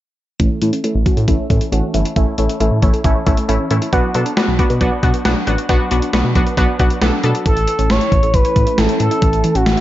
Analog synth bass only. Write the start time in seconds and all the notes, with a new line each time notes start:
0.40 A1
0.62 A2
0.95 A1
1.17 A2
1.28 A1
1.50 A2
1.72 A1
1.94 G1
2.16 A1
2.38 A1
2.60 A1
2.71 A2
2.82 A1
3.04 A1
3.26 A1
3.49 A1
3.71 A2
3.93 B1
4.15 B2
4.48 B1
4.70 B2
4.81 B1
5.03 B2
5.25 B1
5.47 A1
5.69 B1
5.91 B1
6.13 B1
6.24 B2
6.35 B1
6.57 B1
6.80 B1
7.02 B1
7.24 B2
7.46 A1
7.57 A1
7.79 A1
7.90 A1
8.12 A1
8.23 A1
8.34 A1
8.56 A2
8.78 A1
9.00 A2
9.22 A1
9.33 A1
9.55 A1
9.66 A1